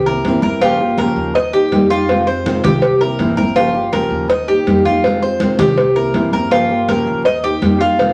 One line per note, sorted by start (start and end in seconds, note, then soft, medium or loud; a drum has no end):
0.00 0.21 C2 loud
0.06 0.25 A#3 soft
0.06 0.25 C4 soft
0.06 0.24 E4 medium
0.06 0.42 A#4 medium
0.06 high conga soft
0.25 1.11 G1 medium
0.25 0.43 C3 medium
0.25 0.43 E3 medium
0.25 0.43 A#3 medium
0.25 0.43 C4 medium
0.25 0.42 E4 medium
0.25 cowbell medium
0.25 high conga medium
0.42 0.62 A#3 soft
0.42 0.61 C4 soft
0.42 0.61 E4 medium
0.42 0.61 A#4 medium
0.42 high conga medium
0.61 0.79 C#3 medium
0.61 0.80 F3 medium
0.61 0.80 A#3 medium
0.61 0.97 F4 medium
0.61 0.80 F4 medium
0.61 0.79 G4 medium
0.61 cowbell loud
0.61 high conga soft
0.79 0.99 A#3 soft
0.79 0.98 F4 soft
0.79 0.98 G4 medium
0.79 high conga soft
0.98 1.35 C#3 medium
0.98 1.35 F3 medium
0.98 1.35 A#3 medium
0.98 1.35 F4 medium
0.98 1.35 G4 medium
0.98 1.34 A#4 medium
0.98 cowbell medium
0.98 high conga medium
1.16 1.68 D#2 medium
1.16 high conga soft
1.35 1.53 D#5 medium
1.35 muted nylon-string guitar stroke medium
1.35 cowbell loud
1.35 high conga soft
1.53 1.71 A#3 soft
1.53 1.72 D#4 soft
1.53 1.89 G4 medium
1.53 1.71 G4 soft
1.53 high conga soft
1.71 2.58 F2 medium
1.71 1.89 D#3 medium
1.71 1.90 G3 medium
1.71 1.90 A#3 medium
1.71 1.90 D#4 medium
1.71 1.89 G4 medium
1.71 cowbell medium
1.71 high conga medium
1.90 2.09 A#3 soft
1.90 2.08 D#4 medium
1.90 2.26 F4 medium
1.90 2.08 G4 medium
2.09 2.26 C3 medium
2.09 2.27 D#3 medium
2.09 2.27 G#3 medium
2.09 2.27 C4 medium
2.09 2.26 F4 medium
2.09 cowbell loud
2.09 high conga soft
2.27 2.45 G#3 soft
2.27 2.45 C4 soft
2.27 2.45 F4 medium
2.27 2.63 C5 medium
2.27 high conga soft
2.45 2.81 C3 medium
2.45 2.82 D#3 medium
2.45 2.82 G#3 medium
2.45 2.82 C4 medium
2.45 2.82 F4 medium
2.45 cowbell medium
2.45 high conga medium
2.64 3.15 C2 medium
2.64 3.00 G4 medium
2.64 cowbell medium
2.64 high conga loud
2.64 low conga medium
2.82 muted nylon-string guitar stroke medium
2.82 cowbell loud
2.82 high conga soft
3.01 3.19 A#3 soft
3.01 3.19 C4 soft
3.01 3.19 E4 soft
3.01 3.36 A#4 medium
3.01 high conga soft
3.19 4.05 G1 medium
3.19 3.37 C3 medium
3.19 3.37 E3 medium
3.19 3.37 A#3 medium
3.19 3.37 C4 medium
3.19 3.36 E4 medium
3.19 cowbell medium
3.19 high conga medium
3.37 3.56 A#3 soft
3.37 3.56 C4 soft
3.37 3.55 E4 medium
3.37 3.55 A#4 medium
3.37 high conga medium
3.56 3.74 C#3 medium
3.56 3.74 F3 medium
3.56 3.74 A#3 medium
3.56 3.92 F4 medium
3.56 3.75 F4 medium
3.56 3.73 G4 medium
3.56 cowbell loud
3.56 high conga soft
3.74 3.92 A#3 soft
3.74 3.92 F4 medium
3.74 3.92 G4 medium
3.74 high conga soft
3.92 4.29 C#3 medium
3.92 4.29 F3 medium
3.92 4.29 A#3 medium
3.92 4.29 F4 medium
3.92 4.30 G4 medium
3.92 4.29 A#4 medium
3.92 cowbell medium
3.92 high conga medium
4.11 4.62 D#2 loud
4.11 high conga soft
4.30 4.48 D#5 medium
4.30 muted nylon-string guitar stroke medium
4.30 cowbell loud
4.30 high conga soft
4.48 4.67 A#3 soft
4.48 4.67 D#4 soft
4.48 4.84 G4 medium
4.48 4.66 G4 medium
4.48 high conga soft
4.66 5.53 F2 medium
4.66 4.85 D#3 medium
4.66 4.85 G3 medium
4.66 4.85 A#3 medium
4.66 4.85 D#4 medium
4.66 4.84 G4 medium
4.66 cowbell medium
4.66 high conga medium
4.85 5.04 A#3 soft
4.85 5.04 D#4 soft
4.85 5.21 F4 medium
4.85 5.03 G4 soft
4.85 high conga medium
5.04 5.22 C3 medium
5.04 5.22 D#3 medium
5.04 5.22 G#3 medium
5.04 5.22 C4 medium
5.04 5.21 F4 medium
5.04 cowbell loud
5.04 high conga soft
5.22 5.40 G#3 soft
5.22 5.41 C4 soft
5.22 5.40 F4 medium
5.22 5.58 C5 medium
5.22 high conga soft
5.40 5.76 C3 medium
5.40 5.77 D#3 medium
5.40 5.77 G#3 medium
5.40 5.77 C4 medium
5.40 5.78 F4 medium
5.40 cowbell medium
5.40 high conga loud
5.59 6.11 C2 medium
5.59 5.95 G4 medium
5.59 cowbell medium
5.59 high conga loud
5.59 low conga medium
5.77 muted nylon-string guitar stroke medium
5.77 cowbell loud
5.77 high conga soft
5.96 6.14 A#3 soft
5.96 6.14 C4 soft
5.96 6.14 E4 soft
5.96 6.32 A#4 medium
5.96 high conga soft
6.14 7.01 G1 loud
6.14 6.32 C3 medium
6.14 6.32 E3 medium
6.14 6.32 A#3 medium
6.14 6.33 C4 medium
6.14 6.32 E4 medium
6.14 cowbell medium
6.14 high conga medium
6.33 6.51 A#3 soft
6.33 6.51 C4 soft
6.33 6.51 E4 medium
6.33 6.51 A#4 medium
6.33 high conga medium
6.51 6.69 C#3 medium
6.51 6.69 F3 medium
6.51 6.70 A#3 medium
6.51 6.87 F4 medium
6.51 6.70 F4 medium
6.51 6.69 G4 medium
6.51 cowbell loud
6.51 high conga soft
6.70 6.89 A#3 soft
6.70 6.88 F4 soft
6.70 6.88 G4 medium
6.70 high conga soft
6.88 7.25 C#3 medium
6.88 7.25 F3 medium
6.88 7.25 A#3 medium
6.88 7.26 F4 medium
6.88 7.26 G4 medium
6.88 7.24 A#4 medium
6.88 cowbell medium
6.88 high conga medium
7.07 7.59 D#2 loud
7.07 high conga soft
7.25 7.43 D#5 medium
7.25 muted nylon-string guitar stroke medium
7.25 cowbell loud
7.25 high conga soft
7.44 7.62 A#3 soft
7.44 7.62 D#4 soft
7.44 7.61 G4 medium
7.44 7.80 G4 medium
7.44 high conga soft
7.62 8.13 F2 loud
7.62 7.80 D#3 medium
7.62 7.80 G3 medium
7.62 7.81 A#3 medium
7.62 7.80 D#4 medium
7.62 7.79 G4 medium
7.62 cowbell medium
7.62 high conga medium
7.80 7.99 A#3 soft
7.80 7.99 D#4 soft
7.80 8.13 F4 medium
7.80 7.98 G4 soft
7.99 8.13 C3 medium
7.99 8.13 D#3 medium
7.99 8.13 G#3 medium
7.99 8.13 C4 medium
7.99 8.13 F4 medium
7.99 cowbell loud
7.99 high conga soft